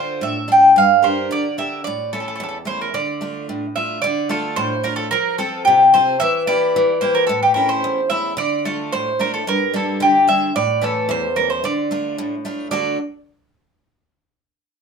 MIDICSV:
0, 0, Header, 1, 3, 480
1, 0, Start_track
1, 0, Key_signature, -1, "minor"
1, 0, Tempo, 543478
1, 678, Time_signature, 2, 2, 24, 8
1, 13084, End_track
2, 0, Start_track
2, 0, Title_t, "Bouzouki"
2, 0, Program_c, 0, 25
2, 0, Note_on_c, 0, 72, 85
2, 185, Note_off_c, 0, 72, 0
2, 203, Note_on_c, 0, 76, 91
2, 448, Note_off_c, 0, 76, 0
2, 458, Note_on_c, 0, 79, 96
2, 684, Note_off_c, 0, 79, 0
2, 688, Note_on_c, 0, 77, 97
2, 917, Note_on_c, 0, 72, 77
2, 931, Note_off_c, 0, 77, 0
2, 1142, Note_off_c, 0, 72, 0
2, 1169, Note_on_c, 0, 74, 93
2, 1388, Note_off_c, 0, 74, 0
2, 1398, Note_on_c, 0, 76, 88
2, 1623, Note_off_c, 0, 76, 0
2, 1627, Note_on_c, 0, 74, 96
2, 1858, Note_off_c, 0, 74, 0
2, 1880, Note_on_c, 0, 69, 78
2, 1934, Note_off_c, 0, 69, 0
2, 1945, Note_on_c, 0, 69, 60
2, 2002, Note_off_c, 0, 69, 0
2, 2013, Note_on_c, 0, 69, 68
2, 2069, Note_off_c, 0, 69, 0
2, 2080, Note_on_c, 0, 69, 63
2, 2139, Note_off_c, 0, 69, 0
2, 2150, Note_on_c, 0, 69, 70
2, 2184, Note_off_c, 0, 69, 0
2, 2195, Note_on_c, 0, 69, 61
2, 2272, Note_off_c, 0, 69, 0
2, 2357, Note_on_c, 0, 72, 78
2, 2472, Note_off_c, 0, 72, 0
2, 2485, Note_on_c, 0, 70, 72
2, 2596, Note_off_c, 0, 70, 0
2, 2600, Note_on_c, 0, 74, 79
2, 3049, Note_off_c, 0, 74, 0
2, 3317, Note_on_c, 0, 76, 89
2, 3543, Note_off_c, 0, 76, 0
2, 3547, Note_on_c, 0, 74, 101
2, 3779, Note_off_c, 0, 74, 0
2, 3801, Note_on_c, 0, 69, 93
2, 4030, Note_on_c, 0, 72, 103
2, 4051, Note_off_c, 0, 69, 0
2, 4260, Note_off_c, 0, 72, 0
2, 4274, Note_on_c, 0, 70, 89
2, 4378, Note_off_c, 0, 70, 0
2, 4381, Note_on_c, 0, 69, 91
2, 4504, Note_off_c, 0, 69, 0
2, 4512, Note_on_c, 0, 70, 110
2, 4750, Note_off_c, 0, 70, 0
2, 4754, Note_on_c, 0, 69, 85
2, 4985, Note_off_c, 0, 69, 0
2, 4988, Note_on_c, 0, 67, 97
2, 5243, Note_on_c, 0, 72, 99
2, 5244, Note_off_c, 0, 67, 0
2, 5466, Note_off_c, 0, 72, 0
2, 5473, Note_on_c, 0, 76, 117
2, 5701, Note_off_c, 0, 76, 0
2, 5717, Note_on_c, 0, 74, 100
2, 6187, Note_off_c, 0, 74, 0
2, 6191, Note_on_c, 0, 72, 96
2, 6312, Note_on_c, 0, 70, 87
2, 6321, Note_off_c, 0, 72, 0
2, 6414, Note_off_c, 0, 70, 0
2, 6418, Note_on_c, 0, 69, 94
2, 6554, Note_off_c, 0, 69, 0
2, 6558, Note_on_c, 0, 67, 79
2, 6657, Note_off_c, 0, 67, 0
2, 6661, Note_on_c, 0, 70, 80
2, 6782, Note_off_c, 0, 70, 0
2, 6791, Note_on_c, 0, 72, 93
2, 7147, Note_off_c, 0, 72, 0
2, 7150, Note_on_c, 0, 76, 99
2, 7378, Note_off_c, 0, 76, 0
2, 7402, Note_on_c, 0, 74, 97
2, 7624, Note_off_c, 0, 74, 0
2, 7643, Note_on_c, 0, 69, 80
2, 7882, Note_on_c, 0, 72, 97
2, 7889, Note_off_c, 0, 69, 0
2, 8128, Note_off_c, 0, 72, 0
2, 8131, Note_on_c, 0, 70, 88
2, 8243, Note_off_c, 0, 70, 0
2, 8246, Note_on_c, 0, 69, 81
2, 8355, Note_off_c, 0, 69, 0
2, 8377, Note_on_c, 0, 70, 103
2, 8615, Note_off_c, 0, 70, 0
2, 8620, Note_on_c, 0, 69, 83
2, 8833, Note_off_c, 0, 69, 0
2, 8852, Note_on_c, 0, 67, 85
2, 9069, Note_off_c, 0, 67, 0
2, 9084, Note_on_c, 0, 76, 93
2, 9304, Note_off_c, 0, 76, 0
2, 9324, Note_on_c, 0, 74, 101
2, 9568, Note_off_c, 0, 74, 0
2, 9572, Note_on_c, 0, 69, 80
2, 9788, Note_off_c, 0, 69, 0
2, 9809, Note_on_c, 0, 72, 95
2, 10027, Note_off_c, 0, 72, 0
2, 10036, Note_on_c, 0, 70, 89
2, 10148, Note_off_c, 0, 70, 0
2, 10155, Note_on_c, 0, 72, 83
2, 10280, Note_off_c, 0, 72, 0
2, 10289, Note_on_c, 0, 74, 92
2, 10729, Note_off_c, 0, 74, 0
2, 11227, Note_on_c, 0, 74, 85
2, 11454, Note_off_c, 0, 74, 0
2, 13084, End_track
3, 0, Start_track
3, 0, Title_t, "Steel-string acoustic guitar"
3, 0, Program_c, 1, 25
3, 0, Note_on_c, 1, 50, 62
3, 0, Note_on_c, 1, 62, 50
3, 0, Note_on_c, 1, 65, 37
3, 0, Note_on_c, 1, 69, 53
3, 175, Note_off_c, 1, 50, 0
3, 188, Note_on_c, 1, 45, 65
3, 332, Note_off_c, 1, 62, 0
3, 332, Note_off_c, 1, 65, 0
3, 335, Note_off_c, 1, 69, 0
3, 422, Note_on_c, 1, 62, 46
3, 428, Note_on_c, 1, 65, 35
3, 428, Note_on_c, 1, 69, 51
3, 621, Note_off_c, 1, 65, 0
3, 622, Note_off_c, 1, 62, 0
3, 625, Note_off_c, 1, 69, 0
3, 659, Note_off_c, 1, 45, 0
3, 672, Note_on_c, 1, 43, 65
3, 905, Note_on_c, 1, 70, 52
3, 911, Note_on_c, 1, 67, 43
3, 915, Note_on_c, 1, 62, 44
3, 1142, Note_off_c, 1, 43, 0
3, 1155, Note_on_c, 1, 50, 63
3, 1297, Note_off_c, 1, 62, 0
3, 1298, Note_off_c, 1, 67, 0
3, 1298, Note_off_c, 1, 70, 0
3, 1395, Note_on_c, 1, 62, 46
3, 1401, Note_on_c, 1, 70, 52
3, 1403, Note_on_c, 1, 67, 35
3, 1591, Note_off_c, 1, 62, 0
3, 1593, Note_off_c, 1, 67, 0
3, 1593, Note_off_c, 1, 70, 0
3, 1624, Note_off_c, 1, 50, 0
3, 1651, Note_on_c, 1, 45, 66
3, 1879, Note_on_c, 1, 57, 50
3, 1885, Note_on_c, 1, 61, 46
3, 1892, Note_on_c, 1, 64, 45
3, 2113, Note_off_c, 1, 45, 0
3, 2119, Note_on_c, 1, 40, 70
3, 2265, Note_off_c, 1, 57, 0
3, 2270, Note_off_c, 1, 61, 0
3, 2271, Note_off_c, 1, 64, 0
3, 2343, Note_on_c, 1, 57, 46
3, 2351, Note_on_c, 1, 61, 34
3, 2356, Note_on_c, 1, 64, 51
3, 2545, Note_off_c, 1, 57, 0
3, 2547, Note_off_c, 1, 61, 0
3, 2551, Note_off_c, 1, 64, 0
3, 2588, Note_off_c, 1, 40, 0
3, 2597, Note_on_c, 1, 50, 65
3, 2834, Note_on_c, 1, 57, 48
3, 2838, Note_on_c, 1, 62, 44
3, 2843, Note_on_c, 1, 65, 52
3, 3066, Note_off_c, 1, 50, 0
3, 3083, Note_on_c, 1, 45, 63
3, 3223, Note_off_c, 1, 57, 0
3, 3225, Note_off_c, 1, 62, 0
3, 3228, Note_off_c, 1, 65, 0
3, 3318, Note_on_c, 1, 57, 42
3, 3321, Note_on_c, 1, 62, 37
3, 3332, Note_on_c, 1, 65, 44
3, 3513, Note_off_c, 1, 57, 0
3, 3517, Note_off_c, 1, 62, 0
3, 3519, Note_off_c, 1, 65, 0
3, 3550, Note_off_c, 1, 45, 0
3, 3566, Note_on_c, 1, 50, 74
3, 3792, Note_on_c, 1, 57, 54
3, 3796, Note_on_c, 1, 62, 47
3, 3804, Note_on_c, 1, 65, 52
3, 4032, Note_off_c, 1, 50, 0
3, 4034, Note_on_c, 1, 45, 72
3, 4181, Note_off_c, 1, 57, 0
3, 4185, Note_off_c, 1, 62, 0
3, 4186, Note_off_c, 1, 65, 0
3, 4271, Note_on_c, 1, 57, 50
3, 4281, Note_on_c, 1, 65, 54
3, 4282, Note_on_c, 1, 62, 38
3, 4470, Note_off_c, 1, 57, 0
3, 4472, Note_off_c, 1, 62, 0
3, 4474, Note_off_c, 1, 65, 0
3, 4505, Note_off_c, 1, 45, 0
3, 4525, Note_on_c, 1, 53, 76
3, 4757, Note_on_c, 1, 60, 57
3, 4762, Note_on_c, 1, 65, 49
3, 4766, Note_on_c, 1, 69, 61
3, 4990, Note_off_c, 1, 53, 0
3, 5012, Note_on_c, 1, 48, 70
3, 5144, Note_off_c, 1, 60, 0
3, 5147, Note_off_c, 1, 65, 0
3, 5149, Note_off_c, 1, 69, 0
3, 5247, Note_on_c, 1, 60, 49
3, 5250, Note_on_c, 1, 65, 46
3, 5256, Note_on_c, 1, 69, 52
3, 5438, Note_off_c, 1, 60, 0
3, 5440, Note_off_c, 1, 65, 0
3, 5441, Note_off_c, 1, 69, 0
3, 5473, Note_off_c, 1, 48, 0
3, 5487, Note_on_c, 1, 52, 73
3, 5716, Note_on_c, 1, 58, 56
3, 5722, Note_on_c, 1, 64, 50
3, 5728, Note_on_c, 1, 67, 56
3, 5950, Note_off_c, 1, 52, 0
3, 5971, Note_on_c, 1, 52, 72
3, 6102, Note_off_c, 1, 58, 0
3, 6107, Note_off_c, 1, 64, 0
3, 6108, Note_off_c, 1, 67, 0
3, 6197, Note_on_c, 1, 58, 53
3, 6206, Note_on_c, 1, 64, 48
3, 6214, Note_on_c, 1, 67, 46
3, 6391, Note_off_c, 1, 58, 0
3, 6398, Note_off_c, 1, 64, 0
3, 6399, Note_off_c, 1, 67, 0
3, 6432, Note_off_c, 1, 52, 0
3, 6441, Note_on_c, 1, 45, 73
3, 6677, Note_on_c, 1, 64, 59
3, 6683, Note_on_c, 1, 61, 44
3, 6686, Note_on_c, 1, 57, 48
3, 6907, Note_off_c, 1, 45, 0
3, 6924, Note_on_c, 1, 40, 73
3, 7063, Note_off_c, 1, 57, 0
3, 7064, Note_off_c, 1, 64, 0
3, 7065, Note_off_c, 1, 61, 0
3, 7151, Note_on_c, 1, 57, 46
3, 7155, Note_on_c, 1, 61, 43
3, 7163, Note_on_c, 1, 64, 54
3, 7347, Note_off_c, 1, 57, 0
3, 7349, Note_off_c, 1, 61, 0
3, 7354, Note_off_c, 1, 64, 0
3, 7388, Note_off_c, 1, 40, 0
3, 7390, Note_on_c, 1, 50, 69
3, 7643, Note_on_c, 1, 57, 52
3, 7648, Note_on_c, 1, 62, 49
3, 7649, Note_on_c, 1, 65, 51
3, 7860, Note_off_c, 1, 50, 0
3, 7888, Note_on_c, 1, 45, 71
3, 8026, Note_off_c, 1, 57, 0
3, 8028, Note_off_c, 1, 62, 0
3, 8028, Note_off_c, 1, 65, 0
3, 8120, Note_on_c, 1, 57, 46
3, 8124, Note_on_c, 1, 62, 45
3, 8133, Note_on_c, 1, 65, 44
3, 8312, Note_off_c, 1, 57, 0
3, 8315, Note_off_c, 1, 62, 0
3, 8317, Note_off_c, 1, 65, 0
3, 8349, Note_off_c, 1, 45, 0
3, 8366, Note_on_c, 1, 43, 71
3, 8598, Note_on_c, 1, 55, 55
3, 8604, Note_on_c, 1, 58, 48
3, 8604, Note_on_c, 1, 62, 57
3, 8828, Note_off_c, 1, 43, 0
3, 8834, Note_on_c, 1, 50, 68
3, 8983, Note_off_c, 1, 55, 0
3, 8984, Note_off_c, 1, 58, 0
3, 8986, Note_off_c, 1, 62, 0
3, 9075, Note_on_c, 1, 55, 49
3, 9082, Note_on_c, 1, 58, 42
3, 9085, Note_on_c, 1, 62, 58
3, 9268, Note_off_c, 1, 55, 0
3, 9270, Note_off_c, 1, 58, 0
3, 9274, Note_off_c, 1, 62, 0
3, 9301, Note_off_c, 1, 50, 0
3, 9324, Note_on_c, 1, 45, 71
3, 9551, Note_on_c, 1, 52, 55
3, 9555, Note_on_c, 1, 57, 52
3, 9562, Note_on_c, 1, 61, 54
3, 9786, Note_off_c, 1, 45, 0
3, 9792, Note_on_c, 1, 40, 76
3, 9937, Note_off_c, 1, 52, 0
3, 9940, Note_off_c, 1, 57, 0
3, 9942, Note_off_c, 1, 61, 0
3, 10033, Note_on_c, 1, 52, 49
3, 10039, Note_on_c, 1, 57, 40
3, 10043, Note_on_c, 1, 61, 50
3, 10226, Note_off_c, 1, 52, 0
3, 10230, Note_off_c, 1, 57, 0
3, 10230, Note_off_c, 1, 61, 0
3, 10260, Note_off_c, 1, 40, 0
3, 10278, Note_on_c, 1, 50, 74
3, 10518, Note_on_c, 1, 57, 54
3, 10524, Note_on_c, 1, 62, 49
3, 10527, Note_on_c, 1, 65, 56
3, 10742, Note_off_c, 1, 50, 0
3, 10761, Note_on_c, 1, 45, 68
3, 10901, Note_off_c, 1, 57, 0
3, 10904, Note_off_c, 1, 62, 0
3, 10907, Note_off_c, 1, 65, 0
3, 10995, Note_on_c, 1, 57, 47
3, 11000, Note_on_c, 1, 62, 44
3, 11005, Note_on_c, 1, 65, 52
3, 11187, Note_off_c, 1, 57, 0
3, 11190, Note_off_c, 1, 62, 0
3, 11193, Note_off_c, 1, 65, 0
3, 11222, Note_off_c, 1, 45, 0
3, 11225, Note_on_c, 1, 50, 58
3, 11227, Note_on_c, 1, 57, 43
3, 11233, Note_on_c, 1, 62, 55
3, 11237, Note_on_c, 1, 66, 55
3, 11245, Note_on_c, 1, 69, 63
3, 11453, Note_off_c, 1, 50, 0
3, 11453, Note_off_c, 1, 57, 0
3, 11457, Note_off_c, 1, 62, 0
3, 11459, Note_off_c, 1, 66, 0
3, 11463, Note_off_c, 1, 69, 0
3, 13084, End_track
0, 0, End_of_file